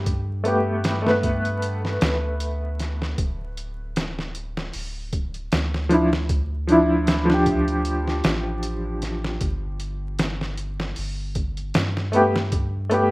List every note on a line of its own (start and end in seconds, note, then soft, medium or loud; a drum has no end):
0.00 1.98 G2 loud
0.06 kick loud
0.06 closed hi-hat medium
0.44 1.00 A3 medium
0.44 1.01 B3 medium
0.44 closed hi-hat medium
0.48 1.02 G4 medium
0.84 snare medium
0.84 closed hi-hat medium
1.02 3.14 A3 medium
1.06 3.16 B3 medium
1.06 snare soft
1.10 3.18 B4 medium
1.23 kick medium
1.23 closed hi-hat medium
1.45 closed hi-hat soft
1.62 closed hi-hat medium
1.85 snare soft
2.01 3.15 D2 medium
2.01 snare loud
2.01 closed hi-hat medium
2.40 closed hi-hat medium
2.79 snare soft
2.79 closed hi-hat medium
3.02 snare soft
3.18 4.71 D1 loud
3.18 kick loud
3.18 closed hi-hat medium
3.57 closed hi-hat medium
3.96 snare loud
3.96 closed hi-hat medium
4.19 snare soft
4.35 closed hi-hat medium
4.57 snare medium
4.73 5.49 D1 medium
4.73 open hi-hat medium
5.13 kick medium
5.13 closed hi-hat medium
5.34 closed hi-hat soft
5.52 8.22 D2 loud
5.52 snare loud
5.52 closed hi-hat medium
5.74 snare soft
5.89 6.07 F3 medium
5.89 6.08 D4 medium
5.89 closed hi-hat medium
5.93 6.09 E4 medium
6.13 snare soft
6.29 kick loud
6.29 closed hi-hat medium
6.67 7.24 F3 medium
6.67 7.25 D4 medium
6.67 closed hi-hat medium
6.72 7.26 E4 medium
7.07 snare loud
7.07 closed hi-hat medium
7.25 9.38 F3 medium
7.30 9.40 D4 medium
7.30 snare soft
7.34 9.42 G4 medium
7.46 kick loud
7.46 closed hi-hat medium
7.68 closed hi-hat soft
7.85 closed hi-hat medium
8.08 snare soft
8.24 9.39 A1 medium
8.24 snare loud
8.24 closed hi-hat medium
8.63 closed hi-hat medium
9.02 snare soft
9.02 closed hi-hat medium
9.24 snare soft
9.41 10.94 G1 loud
9.41 kick loud
9.41 closed hi-hat medium
9.80 closed hi-hat medium
10.19 snare loud
10.19 closed hi-hat medium
10.41 snare soft
10.57 closed hi-hat medium
10.80 snare medium
10.96 11.72 G1 medium
10.96 open hi-hat medium
11.35 kick medium
11.35 closed hi-hat medium
11.57 closed hi-hat soft
11.74 13.11 G2 loud
11.74 snare loud
11.74 closed hi-hat medium
11.97 snare soft
12.12 12.30 A3 medium
12.12 12.31 B3 medium
12.12 closed hi-hat medium
12.16 12.32 G4 medium
12.36 snare soft
12.52 kick loud
12.52 closed hi-hat medium
12.90 13.11 A3 medium
12.90 13.11 B3 medium
12.90 closed hi-hat medium
12.94 13.11 G4 medium